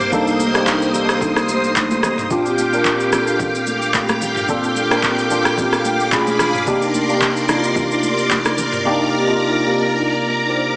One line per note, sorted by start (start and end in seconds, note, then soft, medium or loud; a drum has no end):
0.00 0.12 A#3 medium
0.00 2.26 A#3 medium
0.00 0.12 D4 medium
0.00 0.13 D#4 medium
0.00 0.56 G4 loud
0.00 2.27 C5 medium
0.00 2.27 C6 medium
0.00 mid tom medium
0.00 shaker medium
0.12 2.27 C2 medium
0.12 0.45 A#3 loud
0.12 0.46 D4 loud
0.12 0.46 D#4 loud
0.12 0.46 A4 loud
0.12 2.28 D#6 medium
0.12 kick loud
0.12 low conga medium
0.12 shaker medium
0.27 shaker medium
0.40 high conga medium
0.40 shaker medium
0.54 0.87 A#3 medium
0.54 0.87 D4 medium
0.54 0.87 D#4 medium
0.54 0.87 G4 loud
0.54 cross-stick loud
0.54 shaker soft
0.67 kick medium
0.67 clap medium
0.67 shaker medium
0.82 shaker soft
0.93 1.82 A#3 medium
0.93 1.82 D4 medium
0.93 1.82 D#4 medium
0.93 1.83 A4 medium
0.93 low conga medium
0.93 shaker medium
1.09 cross-stick medium
1.09 shaker medium
1.21 kick loud
1.21 low conga medium
1.21 shaker medium
1.36 cross-stick medium
1.36 shaker soft
1.49 high conga medium
1.49 shaker medium
1.64 shaker soft
1.76 kick medium
1.76 clap loud
1.76 high conga medium
1.76 shaker medium
1.91 high conga medium
1.91 shaker medium
2.03 cross-stick medium
2.03 low conga medium
2.03 shaker medium
2.18 mid tom medium
2.18 shaker soft
2.30 2.63 A#2 loud
2.30 2.64 C4 loud
2.30 2.64 D4 loud
2.30 2.64 F4 loud
2.30 6.09 G4 medium
2.30 2.64 G4 loud
2.30 6.09 F5 medium
2.30 6.09 G5 medium
2.30 10.76 D6 medium
2.30 kick loud
2.30 low conga medium
2.30 shaker medium
2.46 shaker soft
2.58 high conga medium
2.58 shaker medium
2.72 3.05 A#2 medium
2.72 3.05 C4 medium
2.72 3.05 D4 medium
2.72 3.05 F4 medium
2.72 3.06 A#4 loud
2.72 shaker soft
2.85 kick medium
2.85 clap medium
2.85 shaker medium
3.00 shaker soft
3.12 4.00 A#2 medium
3.12 4.00 C4 medium
3.12 4.00 D4 medium
3.12 4.01 F4 medium
3.12 4.01 A4 medium
3.12 cross-stick medium
3.12 low conga medium
3.12 shaker medium
3.27 shaker medium
3.39 kick loud
3.39 low conga medium
3.39 shaker medium
3.55 shaker soft
3.67 high conga medium
3.67 shaker medium
3.82 shaker soft
3.94 kick medium
3.94 clap loud
3.94 high conga medium
3.94 shaker medium
4.09 cross-stick medium
4.09 high conga medium
4.09 shaker medium
4.22 low conga medium
4.22 shaker medium
4.36 mid tom medium
4.36 shaker soft
4.48 4.82 A#2 loud
4.48 4.82 C4 loud
4.48 4.82 D4 loud
4.48 4.82 F4 loud
4.48 4.83 A4 loud
4.48 kick loud
4.48 low conga medium
4.48 shaker medium
4.64 shaker soft
4.76 high conga medium
4.76 shaker medium
4.90 5.23 A#2 medium
4.90 5.23 C4 medium
4.90 5.23 D4 medium
4.90 5.24 F4 medium
4.90 5.24 A#4 loud
4.90 cross-stick loud
4.90 shaker soft
5.03 kick medium
5.03 clap medium
5.03 shaker medium
5.18 shaker soft
5.30 6.12 A#2 medium
5.30 6.12 C4 medium
5.30 6.12 D4 medium
5.30 6.12 F4 medium
5.30 5.38 G4 medium
5.30 low conga medium
5.30 shaker medium
5.38 6.16 A4 medium
5.45 cross-stick medium
5.45 shaker medium
5.58 kick loud
5.58 low conga medium
5.58 shaker medium
5.73 cross-stick medium
5.73 shaker soft
5.85 6.11 G5 medium
5.85 high conga medium
5.85 shaker medium
6.00 shaker soft
6.12 6.57 B2 medium
6.12 6.57 C#4 medium
6.12 6.57 D4 medium
6.12 6.58 F4 medium
6.12 6.66 G#4 medium
6.12 6.58 G#4 loud
6.12 6.66 F5 medium
6.12 6.66 B5 medium
6.12 6.63 B5 medium
6.12 kick medium
6.12 clap loud
6.12 high conga medium
6.12 shaker medium
6.27 high conga medium
6.27 shaker medium
6.39 cross-stick medium
6.39 low conga medium
6.39 shaker medium
6.54 mid tom medium
6.54 shaker medium
6.66 7.00 C3 loud
6.66 7.00 A#3 loud
6.66 7.00 D4 loud
6.66 7.01 D#4 loud
6.66 7.01 G4 loud
6.66 10.76 A#4 medium
6.66 10.76 D5 medium
6.66 8.83 C6 medium
6.66 kick loud
6.66 low conga medium
6.66 shaker medium
6.82 shaker soft
6.94 high conga medium
6.94 shaker medium
7.09 7.41 C3 medium
7.09 7.41 A#3 medium
7.09 7.42 D4 medium
7.09 7.42 D#4 medium
7.09 7.42 G4 medium
7.09 shaker soft
7.21 kick medium
7.21 clap medium
7.21 shaker medium
7.37 shaker soft
7.48 8.36 C3 medium
7.48 8.36 A#3 medium
7.48 8.37 D4 medium
7.48 8.37 D#4 medium
7.48 7.57 E4 medium
7.48 cross-stick medium
7.48 low conga medium
7.48 shaker medium
7.56 8.40 F4 medium
7.64 shaker medium
7.76 kick loud
7.76 low conga medium
7.76 shaker medium
7.91 shaker soft
8.03 high conga medium
8.03 shaker medium
8.18 shaker soft
8.30 kick medium
8.30 clap loud
8.30 high conga medium
8.30 shaker medium
8.45 cross-stick medium
8.45 high conga medium
8.45 shaker medium
8.58 low conga medium
8.58 shaker loud
8.73 mid tom medium
8.73 shaker medium
8.85 9.18 C3 loud
8.85 9.18 A#3 loud
8.85 9.19 D4 loud
8.85 9.19 D#4 loud
8.85 9.19 G4 loud
8.85 10.76 A#5 medium
9.27 9.59 C3 medium
9.27 9.60 A#3 medium
9.27 9.60 D4 medium
9.27 9.60 D#4 medium
9.27 9.60 F4 loud
9.66 10.54 C3 medium
9.66 10.55 A#3 medium
9.66 10.55 D4 medium
9.66 10.55 D#4 medium
9.66 10.49 A#4 medium
10.49 10.75 G4 medium
10.49 10.75 C5 medium